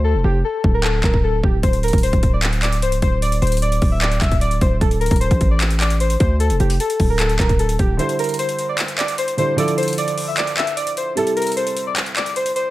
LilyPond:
<<
  \new Staff \with { instrumentName = "Synth keys" } { \time 4/4 \key a \phrygian \tempo 4 = 151 a'8 g'8 a'8. bes'16 a'8 bes'8 a'8 g'8 | c''8 bes'8 c''8. d''16 r8 d''8 c''8 c''8 | d''8 c''8 d''8. e''16 d''8 e''8 d''8 c''8 | a'8 bes'8 c''8. d''16 r8 d''8 c''8 c''8 |
a'8 g'8 a'8. bes'16 a'8 bes'8 a'8 g'8 | c''8 bes'8 c''8. d''16 r8 d''8 c''8 c''8 | d''8 c''8 d''8. e''16 d''8 e''8 d''8 c''8 | a'8 bes'8 c''8. d''16 r8 d''8 c''8 c''8 | }
  \new Staff \with { instrumentName = "Grand piano" } { \time 4/4 \key a \phrygian r1 | r1 | r1 | r1 |
r1 | <d g e' c''>2.~ <d g e' c''>8 <d g e' c''>8 | <d f e' a'>1 | <c g e' a'>1 | }
  \new Staff \with { instrumentName = "808-style bass" } { \clef bass \time 4/4 \key a \phrygian d,16 e,,16 f,,8 r8 d,,4 d,,4 d,,8 | d,,8. d,,8 d,,4.~ d,,16 c,,16 d,,16 d,,8~ | d,,8 d,,4 d,,4 d,,4 d,,8 | d,,8. d,,8 a,,2~ a,,16 d,8~ |
d,16 e,,16 f,,8 r8 d,,4 d,,4 d,,8 | r1 | r1 | r1 | }
  \new DrumStaff \with { instrumentName = "Drums" } \drummode { \time 4/4 r4 r8 bd8 hc8 <hc bd>16 bd16 r8 bd8 | <hh bd>16 hh16 hh32 hh32 <hh bd>32 hh32 hh16 <hh bd>16 <hh bd>8 <hc hh>16 hh16 <hc hh>16 hh16 hh16 hh16 <hh bd>8 | hh16 hh16 hh32 hh32 hh32 hh32 hh16 hh16 <hho bd>8 <hc hh>16 hh16 <hc hh bd>16 <hh bd>16 hh16 hh16 <hh bd>8 | <hh bd>16 hh16 hh32 hh32 <hh bd>32 hh32 hh16 <hh bd>16 <hh bd>8 <hc hh>16 hh16 <hc hh>16 hh16 hh16 hh16 <hh bd>8 |
hh16 hh16 hh16 hh16 hh16 hh16 <hho bd>8 <hc hh>16 hh16 <hc hh bd>16 <hh bd>16 hh16 hh16 <hh bd>8 | hh16 hh16 hh32 hh32 hh32 hh32 hh16 hh16 hh8 <hc hh>16 hh16 <hc hh>16 hh16 hh16 hh16 hh8 | hh16 hh16 hh32 hh32 hh32 hh32 hh16 hh16 hho8 <hc hh>16 hh16 <hc hh>16 hh16 hh16 hh16 hh8 | hh16 hh16 hh32 hh32 hh32 hh32 hh16 hh16 hh8 <hc hh>16 hh16 <hc hh>16 hh16 hh16 hh16 hh8 | }
>>